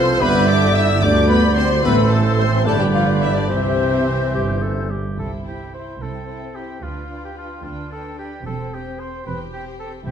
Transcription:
Already playing: bassoon F3, french horn section C4, clarinet A4, oboe C5, viola section C5, trumpet section C5, violin section C5 C6, flute F6
0.20 double bass section G1, cello section G2, bassoon D3, french horn section B3, clarinet G4, trumpet section B4, violin section B4 B5, oboe D5, viola section E5, flute G6
0.47 french horn section D4, violin section D5 D6, trumpet section D5
0.74 french horn section E4, violin section E5 E6, trumpet section E5
1.01 cello section D2, double bass section D2, bassoon D3, french horn section D4, clarinet G4, violin section D5 D6, trumpet section D5, oboe D5, viola section D5, flute G6
1.28 french horn section B3, violin section B4 B5, trumpet section B4
1.55 french horn section C4, violin section C5 C6, trumpet section C5
1.83 double bass section A1, cello section A2, bassoon E3, french horn section B3, clarinet A4, violin section B4 B5, trumpet section B4, viola section C5, oboe C5, flute E6
2.10 french horn section A3, violin section A4 A5, trumpet section A4
2.38 french horn section C4, violin section C5 C6, trumpet section C5
2.64 double bass section G1, cello section G2, bassoon D3, french horn section A3, clarinet G4, violin section A4 A5, trumpet section A4, oboe B4, viola section D5, flute G6
2.78 french horn section G3, violin section G4 G5, trumpet section G4
2.93 french horn section F3, violin section F4 F5, trumpet section F4
3.20 french horn section E3, violin section E4 E5, trumpet section E4
3.35 french horn section D3, violin section D4 D5, trumpet section D4
3.48 double bass section C2, french horn section C3, cello section C3, bassoon E3, trumpet section C4, violin section C4 C5, clarinet G4, oboe C5, viola section E5, flute G6
4.34 double bass section G1, cello section G2, clarinet G4
4.62 clarinet A4
4.90 clarinet G4
5.18 double bass section C2, cello section C2, timpani C3, viola section E4 C5, violin section E4 G5, oboe A4
5.46 viola section E4 C5, oboe G4, violin section G5
5.73 viola section E4 C5, oboe C5, violin section G5
6.01 double bass section C2, cello section C2, violin section C4 G5, viola section E4 C5, oboe A4
6.28 viola section E4 C5, violin section G5
6.55 viola section E4 C5, oboe G4, violin section G5
6.82 double bass section D2, cello section D2, viola section D4 B4, violin section F4 G5, oboe F4
7.09 viola section D4 B4, violin section G5
7.25 oboe G4
7.37 viola section D4 B4, oboe F4, violin section G5
7.64 double bass section D2, cello section D2, violin section D4 G5, viola section D4 B4, oboe F4
7.91 viola section D4 B4, oboe A4, violin section G5
8.18 viola section D4 B4, oboe G4, violin section G5
8.46 double bass section E1, cello section E2, violin section C4 G5, viola section C4 C5, oboe A4
8.73 viola section C4 C5, oboe G4, violin section G5
9.00 viola section C4 C5, oboe C5, violin section G5
9.26 double bass section E1, cello section E2, viola section C4 C5, violin section G4 G5, oboe B4
9.53 viola section C4 C5, oboe G4, violin section G5
9.80 viola section C4 C5, oboe A4, violin section G5
10.06 double bass section C2, cello section C2, timpani C3, viola section C4 C5, violin section E4 E5, oboe G4

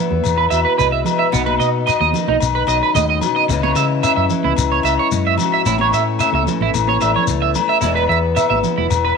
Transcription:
Already playing: steel-string acoustic guitar E2 E3 B3
0.11 fingered electric bass E2, high conga
0.24 fingered electric bass E2, low agogo, shekere
0.38 clean electric guitar B4
0.50 fingered electric bass E2, steel-string acoustic guitar B2, clean electric guitar E5, low agogo, shekere
0.65 clean electric guitar B4
0.78 fingered electric bass C2, steel-string acoustic guitar G#3, clean electric guitar B4, shekere
0.92 clean electric guitar E5
1.05 steel-string acoustic guitar B4, low conga, low agogo, shekere
1.19 clean electric guitar E5
1.32 fingered electric bass B1, steel-string acoustic guitar B2 D#4, clean electric guitar B3, shekere
1.46 clean electric guitar B4, high conga, low agogo
1.60 fingered electric bass B2, steel-string acoustic guitar B3, clean electric guitar D#5, shekere
1.87 steel-string acoustic guitar D#4, clean electric guitar D#5, low agogo, shekere
2.00 fingered electric bass D#2, clean electric guitar D#5, high conga
2.13 steel-string acoustic guitar D#3, low conga, shekere
2.28 fingered electric bass B1, clean electric guitar D#4, high conga
2.40 fingered electric bass B1, low agogo, shekere
2.55 clean electric guitar B4
2.67 fingered electric bass B1, steel-string acoustic guitar F#2, clean electric guitar D#5, low agogo, shekere
2.83 clean electric guitar B4
2.95 fingered electric bass D#2, steel-string acoustic guitar A2, clean electric guitar D#5, shekere
3.10 clean electric guitar D#5
3.21 steel-string acoustic guitar B2, low conga, low agogo, shekere
3.36 clean electric guitar D#5
3.49 fingered electric bass C#2, steel-string acoustic guitar C#3 E3 G#3, muted clean electric guitar stroke, shekere
3.53 steel-string acoustic guitar C#4 E4
3.63 clean electric guitar C#5, high conga, low agogo
3.76 fingered electric bass C#3, steel-string acoustic guitar G#3, clean electric guitar E5, shekere
4.03 steel-string acoustic guitar C#4, clean electric guitar E5, low agogo, shekere
4.16 fingered electric bass F#2, clean electric guitar E5
4.30 steel-string acoustic guitar E3, low conga, shekere
4.44 fingered electric bass C#2, clean electric guitar E4, high conga
4.57 fingered electric bass C#2, low agogo, shekere
4.72 clean electric guitar C#5
4.83 fingered electric bass C#2, steel-string acoustic guitar G#2, clean electric guitar E5, low agogo, shekere
4.99 clean electric guitar C#5
5.12 fingered electric bass F#2, steel-string acoustic guitar G#3, shekere
5.27 clean electric guitar E5
5.38 steel-string acoustic guitar F#4, low conga, low agogo, shekere
5.54 clean electric guitar E5
5.66 fingered electric bass A1, steel-string acoustic guitar A2 C#4, clean electric guitar E4, shekere
5.78 clean electric guitar C#5, high conga, low agogo
5.93 fingered electric bass A2, steel-string acoustic guitar A3, clean electric guitar E5, shekere
6.19 steel-string acoustic guitar C#4, clean electric guitar E5, low agogo, shekere
6.33 fingered electric bass C#2, clean electric guitar E5, high conga
6.46 steel-string acoustic guitar E3, low conga, shekere
6.61 fingered electric bass A1, clean electric guitar E4, high conga
6.74 fingered electric bass A1, low agogo, shekere
6.87 clean electric guitar C#5, high conga
7.01 fingered electric bass A1, steel-string acoustic guitar E2, clean electric guitar E5, low agogo, shekere
7.16 clean electric guitar C#5, low conga
7.27 fingered electric bass C#2, steel-string acoustic guitar A3, shekere
7.42 clean electric guitar E5
7.55 steel-string acoustic guitar E4, low conga, low agogo, shekere
7.69 clean electric guitar E5
7.82 fingered electric bass E1, steel-string acoustic guitar E2 E3 G#3, clean electric guitar E4, shekere
7.86 steel-string acoustic guitar B3 G#4
7.95 clean electric guitar B4, low agogo
8.09 fingered electric bass E2, clean electric guitar E5, muted steel-string acoustic guitar stroke
8.36 steel-string acoustic guitar B3, clean electric guitar E5, low agogo, shekere
8.50 fingered electric bass G#1, clean electric guitar E5, high conga
8.64 steel-string acoustic guitar E3, low conga, shekere
8.78 fingered electric bass E1, clean electric guitar E4, high conga
8.90 fingered electric bass E1, low agogo, shekere
9.05 clean electric guitar B4

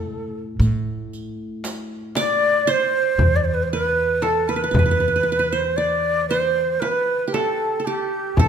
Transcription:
Already playing: upright bass A2, ney A4
0.60 upright bass A2, riq, darbuka ka
1.13 riq
1.64 riq, darbuka tek
2.15 qanun D5, ney D5, riq, darbuka tek, frame drum
2.66 qanun C5, ney C5, riq, darbuka ka
3.18 upright bass E2, darbuka dum, frame drum
3.36 ney D5
3.44 ney C5
3.54 ney B4
3.63 ney C5
3.71 qanun B4, ney B4, darbuka ka
4.22 qanun A4, ney A4, darbuka tek, frame drum
4.48 ney A#4, qanun B4
4.56 qanun B4
4.62 ney B4, qanun B4
4.71 upright bass E2, qanun B4, frame drum, darbuka dum
4.79 qanun B4
4.86 qanun B4
4.91 qanun B4
5.00 qanun B4
5.08 qanun B4
5.16 qanun B4
5.23 qanun B4
5.32 qanun B4
5.39 qanun B4
5.52 ney C5, qanun C5
5.77 ney D5, qanun D5, darbuka ka
6.29 ney C5, qanun C5, darbuka ka
6.80 ney B4, qanun B4, darbuka tek, frame drum
7.28 qanun G4
7.33 ney A4, qanun A4, darbuka tek, frame drum
7.80 qanun A4
7.85 ney G4, qanun G4
8.37 upright bass E2, ney A4, qanun A4, frame drum, darbuka dum

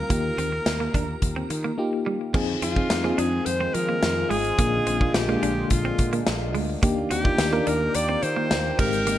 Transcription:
Already playing: fm electric piano G3 C4 F4 G4, alto saxophone A#4, synth bell A#5
0.09 fretless electric bass D#2, fm electric piano D#3 A#3 D#4 F4 G4, clean electric guitar A#3, kick, closed hi-hat
0.38 fretless electric bass D#2, clean electric guitar C4, closed hi-hat
0.52 muted clean electric guitar stroke
0.66 fretless electric bass D#2, muted clean electric guitar stroke, snare, closed hi-hat
0.80 clean electric guitar A#3
0.94 fretless electric bass D#2, clean electric guitar D4, kick, closed hi-hat
1.22 fretless electric bass D#2, kick, closed hi-hat
1.36 clean electric guitar C4
1.50 fretless electric bass D#3, muted clean electric guitar stroke, closed hi-hat
1.64 clean electric guitar A#3
1.78 fm electric piano A#3 D#4 F4 G4
2.06 clean electric guitar G3
2.34 fretless electric bass F2, analog synth pad D#3 G#3 C4 F4, clean electric guitar A#3, fm electric piano C4 D#4 F4 G#4, kick, crash
2.62 fretless electric bass F2, clean electric guitar C4, alto saxophone F4, closed hi-hat
2.76 fm electric piano C4 D#4 F4 G#4, muted clean electric guitar stroke, kick
2.90 fretless electric bass F2, muted clean electric guitar stroke, snare, closed hi-hat
3.04 clean electric guitar A#3, fm electric piano C4 D#4 F4 G#4
3.18 fretless electric bass F2, clean electric guitar D4, alto saxophone G#4, closed hi-hat
3.46 fretless electric bass F2, alto saxophone C5, closed hi-hat
3.61 clean electric guitar C4
3.74 fretless electric bass F3, alto saxophone A#4, muted clean electric guitar stroke, closed hi-hat
3.89 clean electric guitar A#3
4.03 fretless electric bass F2, snare, closed hi-hat
4.30 fretless electric bass G#1, clean electric guitar G#3, alto saxophone G#4, open hi-hat
4.44 closed hi-hat
4.58 fretless electric bass A#1, fm electric piano A#2 A#3 D4 F4 G#4, analog synth pad D3 A#3, clean electric guitar A#3, kick, closed hi-hat
4.87 fretless electric bass A#1, clean electric guitar C4, closed hi-hat
5.00 fm electric piano A#3 D4 F4 G#4, muted clean electric guitar stroke, kick
5.14 fretless electric bass A#1, alto saxophone G4, muted clean electric guitar stroke, snare, closed hi-hat
5.28 fm electric piano G#3 A#3 D4 F4, clean electric guitar A#3
5.43 fretless electric bass A#1, clean electric guitar D4, closed hi-hat
5.70 fretless electric bass A#1, alto saxophone F4, kick, closed hi-hat
5.85 clean electric guitar C4
5.99 fretless electric bass A#2, muted clean electric guitar stroke, kick, closed hi-hat
6.13 clean electric guitar A#3, closed hi-hat
6.27 fretless electric bass A#1, snare, closed hi-hat
6.55 fretless electric bass D2, clean electric guitar G#3, open hi-hat
6.82 fretless electric bass D#2, fm electric piano D#3 A#3 D4 D#4 G4, analog synth pad D#3 A#3 D5 G5, clean electric guitar A#3, kick, closed hi-hat
7.11 fretless electric bass D#2, clean electric guitar C4, alto saxophone G4, closed hi-hat
7.24 fm electric piano A#3 D4 D#4 F4, muted clean electric guitar stroke, kick
7.38 fretless electric bass D#2, muted clean electric guitar stroke, snare, closed hi-hat, tambourine
7.52 fm electric piano A#3 D4 D#4 A#4, clean electric guitar A#3
7.67 fretless electric bass D#2, clean electric guitar D4, alto saxophone A#4, closed hi-hat
7.95 fretless electric bass D#2, alto saxophone D5, closed hi-hat
8.09 clean electric guitar C4
8.23 fretless electric bass D#3, alto saxophone C5, muted clean electric guitar stroke, closed hi-hat
8.36 clean electric guitar A#3
8.51 fretless electric bass D#2, snare, closed hi-hat, tambourine
8.78 fretless electric bass G#1, fm electric piano G#2 G#3 C4 D#4 G4, analog synth pad D#3 G#3 C4, clean electric guitar G#3, alto saxophone A#4, kick, crash
8.93 closed hi-hat
9.07 clean electric guitar A#3, closed hi-hat

